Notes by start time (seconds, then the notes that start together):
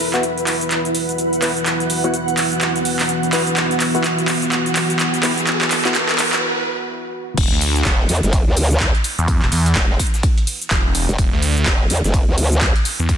Already playing: E3 B3 E4 F#4 B4 E5, riser
0.00 shaker
0.14 B3 E4 F#4, clap, closed hi-hat, shaker
0.23 closed hi-hat, shaker
0.36 F#5, closed hi-hat, shaker
0.47 clap, open hi-hat, shaker
0.61 closed hi-hat, shaker
0.71 clap, closed hi-hat, shaker
0.85 closed hi-hat, shaker
0.95 open hi-hat, shaker
1.09 closed hi-hat, shaker
1.18 closed hi-hat, shaker
1.33 closed hi-hat, shaker
1.42 B3 E4 B4, clap, open hi-hat, shaker
1.57 closed hi-hat, shaker
1.66 clap, closed hi-hat, shaker
1.80 closed hi-hat, shaker
1.90 open hi-hat, shaker
2.04 B3 E4 F#4, closed hi-hat, shaker
2.14 closed hi-hat, shaker
2.28 closed hi-hat, shaker
2.38 clap, open hi-hat, shaker
2.52 closed hi-hat, shaker
2.61 clap, closed hi-hat, shaker
2.76 closed hi-hat, shaker
2.85 open hi-hat, shaker
2.99 clap, open hi-hat, shaker
3.09 closed hi-hat, shaker
3.23 closed hi-hat, shaker
3.33 B3 E4 B4, clap, open hi-hat, shaker
3.47 closed hi-hat, shaker
3.57 clap, closed hi-hat, shaker
3.71 closed hi-hat, shaker
3.80 clap, open hi-hat, shaker
3.95 B3 E4 F#4, closed hi-hat, shaker
4.04 clap, closed hi-hat, shaker
4.18 closed hi-hat, shaker
4.28 clap, open hi-hat, shaker
4.42 closed hi-hat, shaker
4.52 clap, closed hi-hat, shaker
4.66 closed hi-hat, shaker
4.76 clap, open hi-hat, shaker
4.90 closed hi-hat, shaker
4.99 clap, closed hi-hat, shaker
5.14 closed hi-hat, shaker
5.23 B3 E4 B4, clap, open hi-hat, shaker
5.38 closed hi-hat, shaker
5.47 clap, closed hi-hat, shaker
5.61 clap, closed hi-hat, shaker
5.71 clap, open hi-hat, shaker
5.85 B3 E4 F#4, clap, closed hi-hat, shaker
5.95 clap, closed hi-hat, shaker
6.09 clap, closed hi-hat, shaker
6.19 clap, open hi-hat, shaker
6.33 clap, shaker
7.38 E1 E4 B4 F#5, kick, closed hi-hat, crash, ride, tambourine, shaker
7.52 D2, snare
7.61 open hi-hat, tambourine, shaker
7.76 snare, closed hi-hat, shaker
7.85 E1, kick, snare, clap, closed hi-hat, ride, tambourine, shaker
8.09 E2, open hi-hat, tambourine, shaker
8.16 closed hi-hat
8.23 F#1, snare, closed hi-hat, shaker
8.33 kick, closed hi-hat, ride, tambourine, shaker
8.47 D2
8.57 open hi-hat, tambourine, shaker
8.71 closed hi-hat, shaker
8.80 kick, snare, clap, closed hi-hat, ride, tambourine, shaker
8.95 closed hi-hat
9.04 open hi-hat, tambourine, shaker
9.19 E2, closed hi-hat, shaker
9.28 kick, closed hi-hat, ride, tambourine, shaker
9.42 E1, snare, clap
9.52 E2, open hi-hat, shaker
9.66 closed hi-hat, shaker
9.75 E1, kick, snare, clap, closed hi-hat, ride, tambourine, shaker
9.99 kick, open hi-hat, tambourine, shaker
10.07 closed hi-hat
10.14 snare, closed hi-hat, shaker
10.23 kick, closed hi-hat, ride, tambourine, shaker
10.38 closed hi-hat
10.47 open hi-hat, tambourine, shaker
10.61 closed hi-hat, shaker
10.71 E1, kick, snare, clap, closed hi-hat, ride, tambourine, shaker
10.95 open hi-hat, tambourine, shaker
11.09 E1, closed hi-hat, shaker
11.18 E1, kick, closed hi-hat, ride, tambourine, shaker
11.33 D2, snare
11.42 open hi-hat, tambourine, shaker
11.57 snare, closed hi-hat, shaker
11.66 E1, kick, snare, clap, closed hi-hat, ride, tambourine, shaker
11.90 E2, open hi-hat, tambourine, shaker
11.97 closed hi-hat
12.04 F#1, snare, closed hi-hat, shaker
12.14 kick, closed hi-hat, ride, tambourine, shaker
12.28 D2
12.38 open hi-hat, tambourine, shaker
12.52 closed hi-hat, shaker
12.61 kick, snare, clap, closed hi-hat, ride, tambourine, shaker
12.76 closed hi-hat
12.85 open hi-hat, tambourine, shaker
12.99 E2, closed hi-hat, shaker
13.09 kick, closed hi-hat, ride, tambourine, shaker